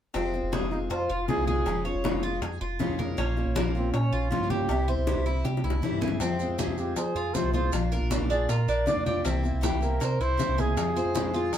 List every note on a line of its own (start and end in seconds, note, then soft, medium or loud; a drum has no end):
0.14 0.42 F1 medium
0.14 0.32 C3 medium
0.14 0.33 F3 medium
0.14 0.33 G#3 medium
0.14 0.51 C4 medium
0.14 0.33 C4 medium
0.14 0.32 F4 medium
0.14 high bongo medium
0.14 high conga soft
0.33 0.52 G#3 soft
0.33 0.52 C4 soft
0.33 0.52 F4 soft
0.33 high bongo soft
0.33 high conga soft
0.43 0.61 F1 medium
0.52 0.70 C3 medium
0.52 0.71 F3 medium
0.52 0.71 G#3 medium
0.52 0.71 C4 medium
0.52 0.70 F4 medium
0.52 0.89 G#4 medium
0.52 high bongo medium
0.52 high conga medium
0.61 0.89 F1 medium
0.71 0.89 G#3 soft
0.71 0.90 C4 soft
0.71 0.80 D#4 medium
0.71 0.89 F4 soft
0.71 high conga soft
0.90 1.08 F2 loud
0.90 1.26 F4 medium
0.90 1.09 C5 medium
0.90 muted steel-string acoustic guitar stroke medium
0.90 high bongo medium
0.90 high conga soft
1.10 1.27 F1 medium
1.10 1.46 F4 medium
1.10 high conga soft
1.28 1.46 C3 medium
1.28 1.47 F3 medium
1.28 1.47 G#3 medium
1.28 1.47 C4 medium
1.28 1.46 F4 medium
1.28 1.46 G#4 medium
1.28 high bongo soft
1.28 low bongo medium
1.28 high conga medium
1.38 1.65 C2 medium
1.47 1.66 G#3 soft
1.47 1.66 C4 soft
1.47 1.65 F4 soft
1.47 1.83 G#4 medium
1.47 1.84 G#4 medium
1.47 high bongo soft
1.47 high conga medium
1.66 1.93 F1 medium
1.66 1.84 C#3 medium
1.66 1.85 F3 medium
1.66 1.85 G#3 medium
1.66 1.85 C#4 medium
1.66 1.83 F4 medium
1.66 high bongo medium
1.66 high conga soft
1.85 2.04 G#3 soft
1.85 2.04 C#4 soft
1.85 2.03 F4 soft
1.85 2.22 C#5 medium
1.85 high bongo soft
1.85 high conga soft
1.94 2.12 F1 medium
2.04 2.22 C#3 medium
2.04 2.22 F3 medium
2.04 2.23 G#3 medium
2.04 2.23 C#4 medium
2.04 2.22 F4 medium
2.04 high bongo medium
2.04 high conga medium
2.13 2.40 F1 medium
2.23 2.42 G#3 soft
2.23 2.42 C#4 soft
2.23 2.41 F4 soft
2.23 2.41 F4 medium
2.41 2.60 F2 loud
2.41 2.60 G#4 medium
2.41 muted steel-string acoustic guitar stroke medium
2.41 high bongo medium
2.41 high conga soft
2.60 2.79 F1 medium
2.60 2.98 F4 medium
2.60 high conga soft
2.79 2.98 C#3 medium
2.79 2.98 F3 medium
2.79 2.98 G#3 medium
2.79 2.98 C#4 medium
2.79 2.97 F4 medium
2.79 high bongo soft
2.79 low bongo medium
2.79 high conga medium
2.89 3.16 F2 medium
2.98 3.17 G#3 soft
2.98 3.17 C#4 soft
2.98 3.17 F4 soft
2.98 3.17 A#4 medium
2.98 high bongo soft
2.98 high conga medium
3.17 3.45 A#1 medium
3.17 3.36 F3 medium
3.17 3.36 A#3 medium
3.17 3.55 C#4 medium
3.17 3.36 C#4 medium
3.17 3.35 F4 medium
3.17 high bongo medium
3.17 high conga soft
3.36 3.55 A#3 soft
3.36 3.55 C#4 soft
3.36 3.55 F4 soft
3.36 high bongo soft
3.36 high conga soft
3.46 3.64 A#1 medium
3.55 3.74 F3 medium
3.55 3.74 A#3 medium
3.55 3.75 C#4 medium
3.55 3.74 F4 medium
3.55 3.92 A#4 medium
3.55 high bongo soft
3.55 high conga medium
3.65 3.92 A#1 medium
3.75 3.93 A#3 soft
3.75 3.92 C4 medium
3.75 3.93 C#4 soft
3.75 3.93 F4 soft
3.75 high conga soft
3.93 4.12 A#2 medium
3.93 4.28 C#4 medium
3.93 4.12 C#5 medium
3.93 muted steel-string acoustic guitar stroke soft
3.93 high bongo medium
3.93 high conga soft
4.12 4.30 A#1 medium
4.12 4.49 F4 medium
4.12 high conga soft
4.31 4.49 F3 medium
4.31 4.50 A#3 medium
4.31 4.50 C#4 medium
4.31 4.52 F4 medium
4.31 4.48 F4 medium
4.31 high bongo soft
4.31 low bongo medium
4.31 high conga medium
4.40 4.68 G2 medium
4.50 4.69 A#3 soft
4.50 4.69 C#4 soft
4.50 4.68 F4 soft
4.50 4.87 G4 medium
4.50 4.88 G4 medium
4.50 high bongo soft
4.50 high conga medium
4.68 4.96 C2 medium
4.68 4.87 C3 medium
4.68 4.88 E3 medium
4.68 4.88 G3 medium
4.68 4.88 C4 medium
4.68 4.87 E4 medium
4.68 high bongo medium
4.68 high conga soft
4.88 5.07 G3 soft
4.88 5.07 C4 soft
4.88 5.06 E4 soft
4.88 5.25 C5 medium
4.88 high bongo soft
4.88 high conga soft
4.97 5.15 C2 medium
5.07 5.25 C3 medium
5.07 5.26 E3 medium
5.07 5.26 G3 medium
5.07 5.26 C4 medium
5.07 5.24 E4 medium
5.07 high bongo soft
5.07 high conga medium
5.16 5.43 C2 medium
5.26 5.44 G3 soft
5.26 5.45 C4 soft
5.26 5.44 E4 soft
5.26 5.45 E4 medium
5.44 5.63 C3 loud
5.44 5.63 G4 medium
5.44 muted steel-string acoustic guitar stroke soft
5.44 high bongo medium
5.44 high conga soft
5.57 high bongo medium
5.63 5.82 C2 medium
5.63 6.01 E4 medium
5.63 high conga medium
5.70 high bongo medium
5.82 6.01 C3 medium
5.82 6.01 E3 medium
5.82 6.02 G3 medium
5.82 6.02 C4 medium
5.82 6.01 E4 medium
5.82 high conga medium
5.92 6.19 G2 medium
6.01 6.21 G3 soft
6.01 6.21 C4 soft
6.01 6.20 E4 soft
6.01 6.20 G#4 medium
6.01 low conga medium
6.08 low bongo medium
6.20 6.48 F2 medium
6.20 6.39 C3 medium
6.20 6.39 F3 medium
6.20 6.40 G#3 medium
6.20 6.58 C4 medium
6.20 6.40 C4 medium
6.20 6.39 F4 medium
6.20 high bongo medium
6.20 high conga soft
6.20 maracas medium
6.39 6.59 G#3 soft
6.39 6.59 C4 soft
6.39 6.58 F4 soft
6.39 high bongo soft
6.39 high conga soft
6.39 maracas soft
6.49 6.67 F2 medium
6.59 6.77 C3 medium
6.59 6.78 F3 medium
6.59 6.78 G#3 medium
6.59 6.78 C4 medium
6.59 6.77 F4 medium
6.59 6.96 G#4 medium
6.59 high bongo soft
6.59 high conga medium
6.59 maracas medium
6.68 6.95 F2 medium
6.78 6.96 G#3 soft
6.78 6.96 C4 soft
6.78 6.96 F4 soft
6.78 6.96 G4 medium
6.78 high conga soft
6.78 maracas soft
6.96 7.15 F3 loud
6.96 7.36 G#4 medium
6.96 7.15 C5 medium
6.96 muted steel-string acoustic guitar stroke medium
6.96 high bongo medium
6.96 high conga soft
6.96 maracas medium
7.15 7.34 F2 medium
7.15 7.53 F4 medium
7.15 high conga soft
7.15 maracas soft
7.35 7.53 C3 medium
7.35 7.53 F3 medium
7.35 7.54 G#3 medium
7.35 7.54 C4 medium
7.35 7.52 F4 medium
7.35 7.53 C5 medium
7.35 high bongo soft
7.35 low bongo medium
7.35 high conga medium
7.35 maracas medium
7.44 7.71 C2 medium
7.53 7.73 G#3 soft
7.53 7.73 C4 soft
7.53 7.72 F4 soft
7.53 7.91 F4 medium
7.53 7.72 C5 medium
7.53 high bongo soft
7.53 high conga medium
7.53 maracas soft
7.72 8.00 A#1 medium
7.72 7.91 F3 medium
7.72 7.92 A#3 medium
7.72 7.92 D4 medium
7.72 7.92 F4 medium
7.72 high bongo medium
7.72 high conga soft
7.72 maracas medium
7.92 8.10 A#3 soft
7.92 8.11 D4 soft
7.92 8.11 F4 soft
7.92 8.29 A#4 medium
7.92 high bongo soft
7.92 high conga soft
7.92 maracas soft
8.01 8.19 A#1 medium
8.11 8.29 F3 medium
8.11 8.30 A#3 medium
8.11 8.30 D4 medium
8.11 8.29 F4 medium
8.11 high bongo medium
8.11 high conga medium
8.11 maracas medium
8.20 8.47 A#1 medium
8.30 8.48 A#3 soft
8.30 8.48 D4 medium
8.30 8.48 D4 soft
8.30 8.48 F4 soft
8.30 8.51 G#4 medium
8.30 maracas soft
8.49 8.67 A#2 loud
8.49 8.68 F4 medium
8.49 8.87 A#4 medium
8.49 muted steel-string acoustic guitar stroke medium
8.49 high bongo medium
8.49 high conga soft
8.49 maracas medium
8.68 8.86 A#1 medium
8.68 9.05 D4 medium
8.68 high conga soft
8.68 maracas soft
8.86 9.05 F3 medium
8.86 9.05 A#3 medium
8.86 9.06 D4 medium
8.86 9.05 F4 medium
8.86 9.05 D5 medium
8.86 high bongo soft
8.86 low bongo medium
8.86 high conga medium
8.86 maracas medium
8.96 9.23 F2 medium
9.06 9.24 A#3 soft
9.06 9.25 D4 soft
9.06 9.24 F4 soft
9.06 9.25 G4 medium
9.06 9.24 D5 medium
9.06 high bongo soft
9.06 high conga medium
9.06 maracas soft
9.24 9.52 C2 medium
9.24 9.43 C3 medium
9.24 9.43 E3 medium
9.24 9.44 A#3 medium
9.24 9.62 C4 medium
9.24 9.43 C4 medium
9.24 9.42 E4 medium
9.24 high bongo medium
9.24 high conga soft
9.24 maracas medium
9.43 9.61 A#3 soft
9.43 9.62 C4 soft
9.43 9.62 E4 soft
9.43 high bongo soft
9.43 high conga soft
9.43 maracas soft
9.53 9.72 C2 medium
9.61 9.80 C3 medium
9.61 9.81 E3 medium
9.61 9.81 A#3 medium
9.61 9.81 C4 medium
9.61 9.79 E4 medium
9.61 10.00 G4 medium
9.61 high bongo medium
9.61 high conga medium
9.61 maracas medium
9.72 10.00 C2 medium
9.81 9.99 A#3 soft
9.81 9.99 C4 soft
9.81 10.00 E4 soft
9.81 10.24 A#4 medium
9.81 high conga soft
9.81 maracas soft
10.00 10.19 C3 loud
10.00 10.20 C5 medium
10.00 muted steel-string acoustic guitar stroke medium
10.00 high bongo medium
10.00 high conga soft
10.00 maracas medium
10.20 10.38 C2 medium
10.20 10.57 E4 medium
10.20 10.62 C5 medium
10.20 high conga soft
10.20 maracas soft
10.37 10.56 C3 medium
10.37 10.57 E3 medium
10.37 10.57 A#3 medium
10.37 10.57 C4 medium
10.37 10.56 E4 medium
10.37 high bongo soft
10.37 low bongo medium
10.37 high conga medium
10.37 maracas medium
10.48 10.76 C2 medium
10.57 10.77 A#3 soft
10.57 10.77 C4 soft
10.57 10.76 E4 soft
10.57 10.95 G#4 medium
10.57 11.58 G#4 medium
10.57 high bongo soft
10.57 high conga medium
10.57 maracas soft
10.76 11.04 F2 medium
10.76 10.95 C3 medium
10.76 10.95 F3 medium
10.76 10.95 G#3 medium
10.76 10.95 C4 medium
10.76 10.94 F4 medium
10.76 high bongo medium
10.76 high conga soft
10.76 maracas medium
10.96 11.15 G#3 soft
10.96 11.15 C4 soft
10.96 11.14 F4 soft
10.96 11.33 C5 medium
10.96 high bongo soft
10.96 high conga soft
10.96 maracas soft
11.05 11.23 F2 medium
11.14 11.33 C3 medium
11.14 11.34 F3 medium
11.14 11.34 G#3 medium
11.14 11.34 C4 medium
11.14 11.32 F4 medium
11.14 high bongo soft
11.14 high conga medium
11.14 maracas medium
11.24 11.52 F2 medium
11.33 11.52 G#3 soft
11.33 11.52 C4 soft
11.33 11.52 F4 soft
11.33 11.53 F4 medium
11.33 maracas soft
11.53 11.58 F3 loud
11.53 11.58 G#4 medium
11.53 muted steel-string acoustic guitar stroke medium
11.53 high bongo medium
11.53 high conga soft
11.53 maracas medium